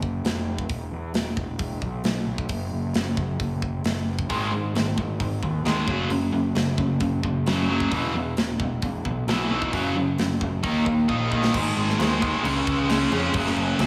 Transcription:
0.02 picked electric bass F#1, kick
0.23 picked electric bass F1, snare, open hi-hat
0.58 kick
0.69 picked electric bass E1, kick, open hi-hat
0.92 picked electric bass E2
1.14 picked electric bass E1, snare, open hi-hat
1.37 picked electric bass E1, kick
1.59 picked electric bass E1, kick, open hi-hat
1.82 picked electric bass B1, kick
2.04 picked electric bass B1, snare, open hi-hat
2.27 picked electric bass B1
2.38 kick
2.49 picked electric bass F#1, kick, open hi-hat
2.73 picked electric bass F#1
2.94 picked electric bass F#1, snare, open hi-hat
3.17 picked electric bass F#1, kick
3.39 picked electric bass F#1, kick, open hi-hat
3.62 picked electric bass F#1, kick
3.84 picked electric bass F#1, snare, open hi-hat
4.19 kick
4.29 picked electric bass G#1, overdriven electric guitar G#2 D#3 G#3, kick, open hi-hat
4.52 picked electric bass G#2, overdriven electric guitar G#2 D#3
4.74 picked electric bass G#1, overdriven electric guitar G#2 D#3, snare, open hi-hat
4.98 picked electric bass G#1, overdriven electric guitar G#2 D#3, kick
5.20 picked electric bass G#1, overdriven electric guitar G#2 D#3, kick, open hi-hat
5.42 picked electric bass D#2, overdriven electric guitar G#2 D#3, kick
5.64 picked electric bass D#2, overdriven electric guitar G#2 D#3 G#3, snare, open hi-hat
5.87 picked electric bass F#1, overdriven electric guitar F#2 C#3 F#3, kick
6.09 picked electric bass F#1, overdriven electric guitar F#2 C#3, open hi-hat
6.33 picked electric bass F#1, overdriven electric guitar F#2 C#3
6.55 picked electric bass F#1, overdriven electric guitar F#2 C#3, snare, open hi-hat
6.78 picked electric bass F#1, overdriven electric guitar F#2 C#3, kick
7.00 picked electric bass F#1, overdriven electric guitar F#2 C#3, kick, open hi-hat
7.23 picked electric bass F#1, overdriven electric guitar F#2 C#3, kick
7.46 picked electric bass F#1, overdriven electric guitar F#2 C#3 F#3, snare, open hi-hat
7.69 overdriven electric guitar F#2 C#3 F#3
7.80 kick
7.91 picked electric bass E1, overdriven electric guitar E2 B2 E3, kick, open hi-hat
8.14 picked electric bass E2, overdriven electric guitar E2 B2
8.37 picked electric bass E1, overdriven electric guitar E2 B2, snare, open hi-hat
8.59 picked electric bass E1, overdriven electric guitar E2 B2, kick
8.82 picked electric bass E1, overdriven electric guitar E2 B2, kick, open hi-hat
9.05 picked electric bass B1, overdriven electric guitar E2 B2, kick
9.27 picked electric bass B1, overdriven electric guitar E2 B2 E3, snare, open hi-hat
9.50 picked electric bass B1, overdriven electric guitar E2 B2 E3
9.62 kick
9.73 picked electric bass F#1, overdriven electric guitar F#2 C#3 F#3, kick, open hi-hat
9.95 picked electric bass F#1, overdriven electric guitar F#2 C#3
10.18 picked electric bass F#1, overdriven electric guitar F#2 C#3, snare, open hi-hat
10.41 picked electric bass F#1, overdriven electric guitar F#2 C#3, kick
10.63 picked electric bass D#2, overdriven electric guitar D#3 A#3 D#4, kick, open hi-hat
10.86 picked electric bass D#2, overdriven electric guitar D#3 A#3, kick
11.08 picked electric bass A#1, overdriven electric guitar D#3 A#3 D#4, kick
11.31 overdriven electric guitar D#3 A#3 D#4, kick
11.44 snare
11.54 picked electric bass G#1, overdriven electric guitar G#2 D#3 G#3, kick, crash
11.76 picked electric bass G#1, crash
11.89 snare
11.99 picked electric bass D#2, overdriven electric guitar G#2 D#3 G#3, snare, crash
12.21 overdriven electric guitar G#2 D#3 G#3, kick, crash
12.44 picked electric bass C#2, overdriven electric guitar C#3 G#3 C#4, crash
12.67 picked electric bass C#2, kick, crash
12.89 picked electric bass C#2, overdriven electric guitar C#3 G#3 C#4, snare, crash
13.11 picked electric bass F2, overdriven electric guitar C#3 G#3 C#4, crash
13.34 picked electric bass F#1, overdriven electric guitar F#2 C#3 F#3, kick, crash
13.46 snare
13.56 picked electric bass F#1, crash
13.78 picked electric bass C#2, overdriven electric guitar F#2 C#3 F#3, snare, crash

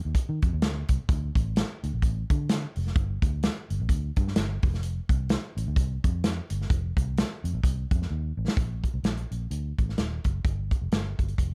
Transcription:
0.05 fingered electric bass D#2
0.15 kick, closed hi-hat
0.29 fingered electric bass D#3
0.42 fingered electric bass F2, kick, closed hi-hat
0.53 fingered electric bass D#2
0.62 fingered electric bass D2, snare, closed hi-hat
0.88 fingered electric bass C2, kick, closed hi-hat
1.09 fingered electric bass D2, kick, closed hi-hat
1.35 fingered electric bass A1, kick, closed hi-hat
1.56 snare, closed hi-hat
1.83 fingered electric bass D2, closed hi-hat
1.94 fingered electric bass A#1
2.02 fingered electric bass A1, kick, closed hi-hat
2.30 fingered electric bass D3, kick, closed hi-hat
2.49 snare, closed hi-hat
2.76 fingered electric bass F1, open hi-hat
2.87 snare
2.96 fingered electric bass G1, kick, closed hi-hat
3.22 fingered electric bass D2, kick, closed hi-hat
3.43 snare, closed hi-hat
3.70 fingered electric bass G1, closed hi-hat
3.80 fingered electric bass A#1
3.89 fingered electric bass D2, kick, closed hi-hat
4.16 fingered electric bass G2, kick, closed hi-hat
4.28 snare
4.36 fingered electric bass G1, snare, closed hi-hat
4.62 fingered electric bass F1, kick, open hi-hat
4.74 snare
4.83 closed hi-hat
5.09 fingered electric bass C2, kick, closed hi-hat
5.29 snare, closed hi-hat
5.57 fingered electric bass A1, closed hi-hat
5.67 fingered electric bass D2
5.76 fingered electric bass C2, kick, closed hi-hat
6.04 fingered electric bass F2, kick, closed hi-hat
6.24 snare, closed hi-hat
6.50 fingered electric bass G1, closed hi-hat
6.61 snare
6.70 fingered electric bass F1, kick, closed hi-hat
6.97 fingered electric bass C2, kick, closed hi-hat
7.17 snare, closed hi-hat
7.44 fingered electric bass F2, closed hi-hat
7.53 fingered electric bass A#1
7.63 fingered electric bass C2, kick, closed hi-hat
7.91 fingered electric bass F2, kick, closed hi-hat
8.02 snare
8.10 fingered electric bass D#2
8.37 fingered electric bass A1
8.48 snare
8.57 fingered electric bass A#1, kick, closed hi-hat
8.84 kick, closed hi-hat
8.94 fingered electric bass C2
9.03 fingered electric bass A#1, snare, closed hi-hat
9.17 closed hi-hat
9.31 fingered electric bass A#1, closed hi-hat
9.51 fingered electric bass D2, closed hi-hat
9.78 fingered electric bass A1, kick, closed hi-hat
9.89 snare
9.98 fingered electric bass D#1, snare, closed hi-hat
10.24 fingered electric bass F#1, kick, closed hi-hat
10.45 fingered electric bass G1, kick, closed hi-hat
10.71 kick, closed hi-hat
10.82 fingered electric bass F1
10.92 fingered electric bass G1, snare, closed hi-hat
11.19 fingered electric bass G1, kick, closed hi-hat
11.28 closed hi-hat
11.38 fingered electric bass F1, kick, closed hi-hat

